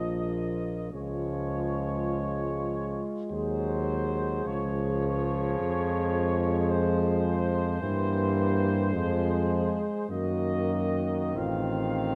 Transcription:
0.00 0.90 A#1 medium
0.00 0.88 F3 medium
0.00 0.91 A#3 medium
0.00 0.87 F4 medium
0.00 0.89 D#5 medium
0.92 3.00 C#2 medium
0.92 3.00 F3 medium
0.92 5.30 G#3 medium
0.92 3.27 F4 medium
0.92 3.14 C#5 medium
3.30 4.42 D#2 medium
3.30 4.46 F#3 medium
3.30 7.65 G#4 medium
3.30 4.44 C5 medium
4.45 5.58 C#2 medium
4.45 7.83 F3 medium
4.45 6.71 C#5 medium
5.60 7.78 F2 medium
5.60 7.78 G#3 medium
6.71 10.10 C5 medium
7.81 8.96 G2 medium
7.81 8.93 E3 medium
7.81 8.94 A#3 medium
7.81 8.91 G4 medium
8.93 9.82 F2 medium
8.93 9.80 F3 medium
8.93 10.09 G#3 medium
8.93 10.10 G#4 medium
10.09 11.37 F#2 medium
10.09 12.15 D#3 medium
10.09 11.38 A#3 medium
10.09 11.34 F#4 medium
10.09 11.34 D#5 medium
11.35 12.15 A1 medium
11.35 12.15 C4 medium
11.35 12.15 F4 medium
11.35 12.15 F5 medium

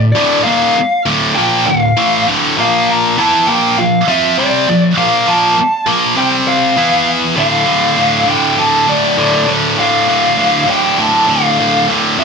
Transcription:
0.00 0.10 D2 medium
0.00 0.10 A2 medium
0.12 0.45 D2 loud
0.12 0.45 A2 loud
0.12 0.45 D3 loud
0.12 0.43 D5 medium
0.44 0.75 D#2 medium
0.44 0.76 A#2 loud
0.44 0.76 D#3 loud
0.44 1.01 F5 medium
0.76 muted distorted electric guitar stroke medium
1.06 1.36 D2 loud
1.06 1.36 A2 loud
1.06 1.36 D3 loud
1.35 1.66 A#2 loud
1.35 1.66 F3 loud
1.35 1.67 A#3 loud
1.35 1.66 G5 loud
1.67 1.91 D2 medium
1.67 1.92 A2 medium
1.67 2.23 F5 loud
1.97 2.26 A2 medium
1.97 2.26 E3 loud
1.97 2.27 A3 loud
2.27 2.56 D2 medium
2.27 2.57 A2 medium
2.27 2.57 D3 loud
2.58 3.17 A#2 loud
2.58 3.17 F3 loud
2.58 3.17 A#3 loud
2.58 2.90 F5 loud
2.89 3.19 A#5 loud
3.18 3.47 E3 loud
3.18 3.47 B3 medium
3.18 3.47 E4 loud
3.18 3.49 A5 loud
3.47 3.76 A#2 medium
3.47 3.77 F3 loud
3.47 3.77 A#3 loud
3.47 3.78 G5 loud
3.78 4.01 A#2 medium
3.78 4.02 F3 medium
3.78 4.08 F5 loud
4.08 4.37 F3 medium
4.08 4.37 C4 loud
4.08 4.37 F4 loud
4.08 4.36 E5 medium
4.38 4.67 C3 medium
4.38 4.67 G3 loud
4.38 4.67 C4 loud
4.38 4.79 D5 medium
4.68 4.92 A#2 medium
4.68 4.92 F3 medium
4.98 5.26 A#2 medium
4.98 5.27 F3 loud
4.98 5.27 A#3 loud
4.98 5.28 F5 medium
5.27 5.56 A#2 medium
5.27 5.57 F3 medium
5.27 5.57 A#3 loud
5.27 5.84 A5 medium
5.57 muted distorted electric guitar stroke medium
5.87 6.16 A#2 medium
5.87 6.16 F3 loud
5.87 6.17 A#3 loud
6.16 6.76 C3 loud
6.16 6.76 G3 loud
6.16 6.77 C4 loud
6.16 6.26 G5 loud
6.48 7.04 F5 loud
6.76 7.36 E3 medium
6.76 7.36 B3 loud
6.76 7.37 E4 loud
7.36 7.65 D2 medium
7.36 7.64 A2 loud
7.36 7.66 D3 loud
7.36 8.30 F5 medium
7.65 7.97 D2 medium
7.65 7.96 A2 medium
7.65 7.97 D3 loud
7.97 8.26 D2 medium
7.97 8.26 A2 medium
7.97 8.27 D3 medium
8.27 8.56 D2 loud
8.27 8.57 A2 loud
8.27 8.57 D3 loud
8.27 8.57 G5 medium
8.57 8.85 D2 medium
8.57 8.86 A2 medium
8.57 8.86 D3 loud
8.57 8.89 A5 loud
8.87 9.16 D2 medium
8.87 9.16 A2 medium
8.87 9.17 D3 medium
8.87 9.44 D5 medium
9.17 9.46 D2 loud
9.17 9.46 A2 loud
9.17 9.47 D3 loud
9.47 9.76 D2 medium
9.47 9.76 A2 medium
9.47 9.77 D3 loud
9.77 10.06 D2 medium
9.77 10.07 A2 loud
9.77 10.07 D3 loud
9.77 10.65 F5 medium
10.08 10.36 D2 medium
10.08 10.37 A2 medium
10.08 10.37 D3 medium
10.37 10.66 D2 medium
10.37 10.66 A2 medium
10.37 10.67 D3 medium
10.67 10.97 D2 medium
10.67 10.98 A2 loud
10.67 10.98 D3 loud
10.67 11.00 G5 medium
10.98 11.26 D2 medium
10.98 11.27 A2 loud
10.98 11.27 D3 loud
10.98 11.30 A5 loud
11.27 11.57 D2 medium
11.27 11.58 A2 medium
11.27 11.58 D3 loud
11.27 11.85 F5 medium
11.59 11.87 D2 loud
11.59 11.88 A2 loud
11.59 11.88 D3 loud
11.88 12.16 D2 medium
11.88 12.17 A2 medium
11.88 12.17 D3 medium
12.18 12.24 F2 loud
12.18 12.24 C3 loud
12.18 12.24 F3 loud
12.18 12.24 F5 medium

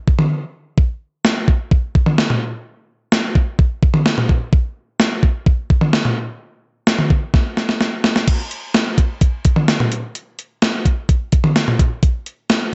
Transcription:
0.08 kick medium
0.19 mid tom medium
0.78 kick loud
1.25 snare loud
1.48 kick medium
1.71 kick medium
1.95 kick medium
2.06 mid tom medium
2.18 snare loud
2.30 mid tom medium
3.12 snare loud
3.35 kick medium
3.59 kick medium
3.83 kick medium
3.94 mid tom medium
4.06 snare loud
4.18 mid tom medium
4.29 kick medium
4.53 kick loud
5.00 snare loud
5.23 kick medium
5.46 kick medium
5.70 kick medium
5.81 mid tom medium
5.93 snare loud
6.05 mid tom medium
6.87 snare loud
6.99 mid tom medium
7.10 kick medium
7.34 kick medium
7.34 snare medium
7.57 snare medium
7.69 snare medium
7.81 snare medium
8.04 snare medium
8.16 snare medium
8.28 kick loud
8.28 closed hi-hat medium
8.28 crash loud
8.51 closed hi-hat medium
8.74 snare loud
8.74 closed hi-hat medium
8.98 kick medium
8.98 closed hi-hat medium
9.21 kick loud
9.21 closed hi-hat medium
9.45 kick medium
9.45 closed hi-hat medium
9.56 mid tom medium
9.68 snare loud
9.68 closed hi-hat medium
9.80 mid tom medium
9.92 closed hi-hat medium
10.15 closed hi-hat medium
10.39 closed hi-hat medium
10.62 snare loud
10.62 closed hi-hat medium
10.85 kick medium
10.85 closed hi-hat medium
11.09 kick loud
11.09 closed hi-hat medium
11.32 kick medium
11.32 closed hi-hat medium
11.44 mid tom medium
11.56 snare loud
11.56 closed hi-hat medium
11.68 mid tom medium
11.79 kick medium
11.79 closed hi-hat medium
12.03 kick loud
12.03 closed hi-hat medium
12.26 closed hi-hat medium
12.50 snare loud
12.50 closed hi-hat medium

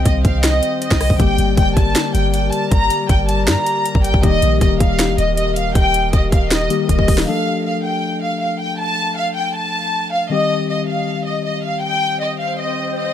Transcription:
0.00 1.15 D#3 medium
0.00 1.15 G3 medium
0.00 1.16 C4 medium
0.00 1.17 C4 medium
0.00 1.16 G4 medium
0.00 1.17 C5 medium
0.00 1.17 D#5 medium
0.00 1.17 G5 medium
0.06 0.24 C2 loud
0.06 0.21 D#5 medium
0.06 kick loud
0.06 closed hi-hat medium
0.25 0.61 C2 loud
0.25 0.40 F5 medium
0.25 kick loud
0.25 closed hi-hat medium
0.44 0.79 D#5 medium
0.44 finger snap medium
0.44 snare loud
0.44 closed hi-hat medium
0.63 closed hi-hat medium
0.82 1.17 D#5 medium
0.82 closed hi-hat medium
0.91 1.09 C2 loud
0.91 finger snap medium
0.91 kick loud
0.91 snare medium
1.01 cross-stick loud
1.01 open hi-hat medium
1.10 1.19 C2 loud
1.10 kick medium
1.18 1.38 G1 loud
1.18 4.19 D3 medium
1.18 4.19 G3 medium
1.18 4.20 G3 medium
1.18 4.20 A#3 medium
1.18 4.20 G4 medium
1.18 7.23 A#4 medium
1.18 4.20 D5 medium
1.18 1.55 G5 medium
1.18 kick loud
1.18 closed hi-hat medium
1.38 1.57 G1 loud
1.38 closed hi-hat medium
1.57 1.76 F1 loud
1.57 1.73 G5 medium
1.57 kick loud
1.57 closed hi-hat medium
1.76 1.95 G1 loud
1.76 2.12 A5 medium
1.76 kick loud
1.76 closed hi-hat medium
1.95 finger snap medium
1.95 snare loud
1.95 closed hi-hat medium
2.15 2.51 G1 loud
2.15 2.30 G5 medium
2.15 closed hi-hat medium
2.34 2.49 G5 medium
2.34 closed hi-hat medium
2.52 2.68 A5 medium
2.52 closed hi-hat medium
2.72 2.90 G1 loud
2.72 3.07 A#5 loud
2.72 kick loud
2.72 closed hi-hat medium
2.90 closed hi-hat medium
3.09 3.49 G1 loud
3.09 3.25 G5 medium
3.09 kick loud
3.09 closed hi-hat medium
3.28 3.44 A5 medium
3.28 closed hi-hat medium
3.47 3.56 G2 loud
3.47 4.01 A#5 medium
3.47 finger snap medium
3.47 snare loud
3.47 closed hi-hat medium
3.66 closed hi-hat medium
3.85 closed hi-hat medium
3.95 4.13 G1 loud
3.95 kick loud
4.04 4.20 G5 medium
4.04 closed hi-hat medium
4.14 4.23 G1 loud
4.14 kick medium
4.22 4.42 D#1 loud
4.22 6.66 D#3 medium
4.22 6.66 G3 medium
4.22 6.66 A#3 medium
4.22 7.24 G4 medium
4.22 6.67 G4 medium
4.22 4.59 D#5 loud
4.22 7.24 D#5 medium
4.22 kick loud
4.22 closed hi-hat medium
4.42 4.61 A#1 loud
4.42 closed hi-hat medium
4.61 4.80 D#1 loud
4.61 4.77 D#5 medium
4.61 kick loud
4.61 closed hi-hat medium
4.80 5.10 D#1 loud
4.80 5.16 F5 medium
4.80 kick loud
4.80 closed hi-hat medium
4.99 finger snap medium
4.99 snare loud
4.99 closed hi-hat medium
5.09 5.18 F1 loud
5.18 5.73 D#1 loud
5.18 5.34 D#5 medium
5.18 closed hi-hat medium
5.37 5.53 D#5 medium
5.37 closed hi-hat medium
5.56 5.72 F5 medium
5.56 closed hi-hat medium
5.75 6.12 D#1 loud
5.75 6.11 G5 loud
5.75 kick loud
5.75 closed hi-hat medium
5.94 closed hi-hat medium
6.13 6.31 D#1 loud
6.13 6.29 D#5 medium
6.13 kick loud
6.13 closed hi-hat medium
6.32 6.69 D#1 loud
6.32 6.48 F5 medium
6.32 kick loud
6.32 closed hi-hat medium
6.51 6.87 D#5 medium
6.51 finger snap medium
6.51 snare loud
6.51 closed hi-hat medium
6.70 7.27 D#3 medium
6.70 7.27 G3 soft
6.70 7.27 A#3 soft
6.70 7.28 G4 medium
6.70 closed hi-hat medium
6.89 7.26 D#1 loud
6.89 7.25 D#5 medium
6.89 kick medium
6.89 closed hi-hat medium
6.99 kick medium
7.08 kick loud
7.08 open hi-hat medium
7.18 snare loud
7.26 10.26 F3 medium
7.26 10.27 A3 medium
7.26 10.27 D4 medium
7.26 10.28 A4 medium
7.26 7.63 F5 medium
7.65 7.81 F5 medium
7.84 8.20 G5 medium
8.22 8.38 F5 medium
8.41 8.57 F5 medium
8.60 8.76 G5 medium
8.79 9.15 A5 loud
9.17 9.33 F5 medium
9.36 9.52 G5 medium
9.55 10.09 A5 medium
10.12 10.28 F5 medium
10.30 13.13 D#3 medium
10.30 13.13 G3 medium
10.30 13.13 C4 medium
10.30 13.13 G4 medium
10.30 10.67 D#5 loud
10.69 10.84 D#5 medium
10.88 11.24 F5 medium
11.26 11.41 D#5 medium
11.45 11.60 D#5 medium
11.64 11.79 F5 medium
11.83 12.18 G5 loud
11.83 swell medium
12.21 12.36 D#5 medium
12.40 12.55 F5 medium
12.59 12.95 D#5 medium
12.97 13.13 D#5 medium

